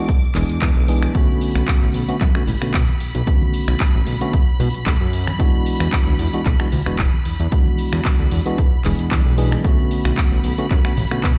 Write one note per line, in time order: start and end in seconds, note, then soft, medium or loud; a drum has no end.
0.00 1.16 D6 medium
0.08 kick loud
0.08 closed hi-hat medium
0.08 cabasa soft
0.24 cabasa soft
0.35 0.44 E1 medium
0.35 0.85 E3 medium
0.35 0.85 G#3 medium
0.35 0.85 B3 medium
0.35 0.85 D4 medium
0.35 0.86 G#4 medium
0.35 clap medium
0.35 open hi-hat medium
0.35 cabasa medium
0.49 0.59 E2 soft
0.49 closed hi-hat medium
0.49 cabasa soft
0.62 0.71 E2 medium
0.62 kick loud
0.62 clap loud
0.62 closed hi-hat medium
0.62 cabasa soft
0.76 1.07 B1 medium
0.76 cabasa soft
0.88 1.12 E3 medium
0.88 1.12 G#3 medium
0.88 1.12 B3 medium
0.88 1.12 D4 medium
0.88 1.12 G#4 medium
0.88 open hi-hat loud
0.88 cabasa medium
1.03 finger snap medium
1.03 closed hi-hat medium
1.03 cabasa soft
1.14 2.05 D3 medium
1.14 2.05 A3 medium
1.14 2.05 B3 medium
1.14 2.06 C#4 medium
1.14 2.06 F#4 loud
1.14 9.63 B5 medium
1.14 kick loud
1.14 closed hi-hat medium
1.14 cabasa soft
1.30 cabasa soft
1.41 open hi-hat loud
1.41 cabasa medium
1.56 1.63 B1 loud
1.56 finger snap medium
1.56 closed hi-hat medium
1.56 cabasa soft
1.68 kick loud
1.68 clap loud
1.68 closed hi-hat medium
1.68 cabasa soft
1.82 1.90 A1 loud
1.82 cabasa soft
1.94 2.03 B1 medium
1.94 open hi-hat loud
1.94 cabasa medium
2.08 2.15 D3 medium
2.08 2.15 A3 medium
2.08 2.15 B3 medium
2.08 2.16 C#4 medium
2.08 2.16 F#4 loud
2.08 closed hi-hat medium
2.08 cabasa soft
2.21 2.30 F#2 medium
2.21 kick loud
2.21 clap medium
2.21 closed hi-hat medium
2.21 cabasa soft
2.35 2.42 D3 medium
2.35 2.42 A3 medium
2.35 2.42 B3 medium
2.35 2.42 C#4 medium
2.35 2.42 F#4 loud
2.35 finger snap medium
2.47 2.56 A1 medium
2.47 open hi-hat loud
2.47 low conga medium
2.47 cabasa medium
2.61 2.72 B2 soft
2.61 2.72 D3 medium
2.61 2.72 A3 medium
2.61 2.73 B3 medium
2.61 2.73 C#4 medium
2.61 2.73 F#4 medium
2.61 finger snap medium
2.61 closed hi-hat medium
2.61 cabasa soft
2.74 2.83 B2 medium
2.74 kick loud
2.74 clap loud
2.74 closed hi-hat medium
2.74 cabasa soft
2.88 high conga medium
2.88 cabasa soft
3.00 3.12 B1 soft
3.00 open hi-hat loud
3.00 cabasa medium
3.15 3.23 B1 medium
3.15 closed hi-hat medium
3.15 cabasa soft
3.26 4.17 D3 medium
3.26 4.18 A3 medium
3.26 4.18 B3 medium
3.26 4.18 C#4 medium
3.26 4.18 F#4 medium
3.26 kick loud
3.26 closed hi-hat medium
3.26 cabasa soft
3.42 high conga medium
3.42 cabasa soft
3.54 open hi-hat loud
3.54 cabasa medium
3.68 3.76 B1 loud
3.68 finger snap medium
3.68 closed hi-hat medium
3.68 cabasa soft
3.80 kick loud
3.80 clap loud
3.80 closed hi-hat soft
3.80 cabasa soft
3.94 4.02 A1 loud
3.94 cabasa soft
4.07 4.16 B1 medium
4.07 open hi-hat loud
4.07 cabasa medium
4.21 4.32 D3 medium
4.21 4.32 A3 medium
4.21 4.32 B3 medium
4.21 4.32 C#4 medium
4.21 4.32 F#4 loud
4.21 closed hi-hat medium
4.21 cabasa soft
4.33 kick loud
4.33 closed hi-hat medium
4.33 cabasa soft
4.60 4.69 B2 medium
4.60 open hi-hat loud
4.60 low conga medium
4.60 cabasa medium
4.74 4.84 B1 soft
4.74 closed hi-hat medium
4.74 cabasa soft
4.86 4.95 B1 medium
4.86 kick loud
4.86 clap loud
4.86 closed hi-hat medium
4.86 cabasa soft
5.01 5.32 F#2 medium
5.01 cabasa soft
5.13 open hi-hat loud
5.13 cabasa medium
5.27 finger snap medium
5.27 closed hi-hat medium
5.27 high conga medium
5.27 cabasa soft
5.39 6.30 E3 medium
5.39 6.30 G#3 medium
5.39 6.30 B3 medium
5.39 6.30 D4 medium
5.39 6.31 F#4 loud
5.39 kick loud
5.39 closed hi-hat soft
5.39 cabasa soft
5.55 cabasa soft
5.66 open hi-hat loud
5.66 cabasa medium
5.80 5.88 E2 loud
5.80 finger snap medium
5.80 closed hi-hat medium
5.80 cabasa soft
5.93 kick loud
5.93 clap loud
5.93 closed hi-hat soft
5.93 cabasa soft
6.07 6.15 D2 loud
6.07 cabasa soft
6.19 6.28 E2 medium
6.19 open hi-hat loud
6.19 cabasa medium
6.33 6.40 E3 medium
6.33 6.40 G#3 medium
6.33 6.40 B3 medium
6.33 6.40 D4 medium
6.33 6.41 F#4 loud
6.33 closed hi-hat medium
6.33 cabasa soft
6.46 6.55 B1 medium
6.46 kick loud
6.46 clap medium
6.46 closed hi-hat medium
6.46 cabasa soft
6.60 6.67 E3 medium
6.60 6.67 G#3 medium
6.60 6.67 B3 medium
6.60 6.67 D4 medium
6.60 6.67 F#4 medium
6.60 finger snap medium
6.72 6.81 D2 medium
6.72 open hi-hat loud
6.72 low conga medium
6.72 cabasa medium
6.86 6.97 E1 soft
6.86 6.97 E3 medium
6.86 6.97 G#3 medium
6.86 6.97 B3 medium
6.86 6.97 D4 medium
6.86 6.98 F#4 medium
6.86 finger snap medium
6.86 closed hi-hat medium
6.86 cabasa soft
6.99 7.08 E1 medium
6.99 kick loud
6.99 clap loud
6.99 closed hi-hat medium
6.99 cabasa soft
7.13 high conga medium
7.13 cabasa soft
7.25 7.37 E2 soft
7.25 open hi-hat loud
7.25 cabasa medium
7.40 7.47 E2 loud
7.40 closed hi-hat medium
7.40 cabasa soft
7.51 8.42 E3 medium
7.51 8.42 G#3 medium
7.51 8.43 B3 medium
7.51 8.43 D4 medium
7.51 8.43 F#4 medium
7.51 kick loud
7.51 closed hi-hat soft
7.51 cabasa soft
7.66 high conga medium
7.66 cabasa soft
7.78 open hi-hat loud
7.78 cabasa medium
7.93 8.01 E2 loud
7.93 finger snap medium
7.93 closed hi-hat medium
7.93 cabasa soft
8.05 kick loud
8.05 clap loud
8.05 closed hi-hat soft
8.05 cabasa soft
8.20 8.27 D2 loud
8.20 cabasa soft
8.31 8.41 E2 medium
8.31 open hi-hat loud
8.31 cabasa medium
8.46 8.57 E3 medium
8.46 8.57 G#3 medium
8.46 8.57 B3 medium
8.46 8.57 D4 medium
8.46 8.57 F#4 loud
8.46 closed hi-hat medium
8.46 cabasa soft
8.58 kick loud
8.58 closed hi-hat soft
8.58 cabasa soft
8.84 8.94 E1 medium
8.84 9.35 E3 medium
8.84 9.35 G#3 medium
8.84 9.35 B3 medium
8.84 9.35 D4 medium
8.84 9.35 G#4 medium
8.84 clap medium
8.84 open hi-hat loud
8.84 low conga medium
8.84 cabasa medium
8.99 9.09 E2 soft
8.99 closed hi-hat medium
8.99 cabasa soft
9.11 9.20 E2 medium
9.11 kick loud
9.11 clap loud
9.11 closed hi-hat soft
9.11 cabasa soft
9.26 9.57 B1 medium
9.26 cabasa soft
9.37 9.61 E3 medium
9.37 9.61 G#3 medium
9.37 9.62 B3 medium
9.37 9.62 D4 medium
9.37 9.62 G#4 medium
9.37 open hi-hat loud
9.37 cabasa medium
9.52 finger snap medium
9.52 closed hi-hat medium
9.52 high conga medium
9.52 cabasa soft
9.64 10.55 D3 medium
9.64 10.55 A3 medium
9.64 10.55 B3 medium
9.64 10.55 C#4 medium
9.64 10.56 F#4 loud
9.64 11.38 B5 medium
9.64 kick loud
9.64 closed hi-hat medium
9.64 cabasa soft
9.80 cabasa soft
9.91 open hi-hat loud
9.91 cabasa medium
10.05 10.13 B1 loud
10.05 finger snap medium
10.05 closed hi-hat medium
10.05 cabasa soft
10.18 kick loud
10.18 clap loud
10.18 closed hi-hat soft
10.18 cabasa soft
10.32 10.39 A1 loud
10.32 cabasa soft
10.44 10.53 B1 medium
10.44 open hi-hat loud
10.44 cabasa medium
10.58 10.65 D3 medium
10.58 10.65 A3 medium
10.58 10.65 B3 medium
10.58 10.65 C#4 medium
10.58 10.65 F#4 loud
10.58 closed hi-hat medium
10.58 cabasa soft
10.71 10.80 F#2 medium
10.71 kick loud
10.71 clap medium
10.71 closed hi-hat soft
10.71 cabasa soft
10.84 10.91 D3 medium
10.84 10.91 A3 medium
10.84 10.92 B3 medium
10.84 10.92 C#4 medium
10.84 10.92 F#4 loud
10.84 finger snap medium
10.97 11.06 A1 medium
10.97 open hi-hat medium
10.97 low conga medium
10.97 cabasa medium
11.11 11.21 B2 soft
11.11 11.22 D3 medium
11.11 11.22 A3 medium
11.11 11.22 B3 medium
11.11 11.22 C#4 medium
11.11 11.22 F#4 medium
11.11 finger snap medium
11.11 closed hi-hat medium
11.11 cabasa soft
11.24 11.33 B2 medium
11.24 kick loud
11.24 clap loud
11.24 closed hi-hat soft
11.24 cabasa soft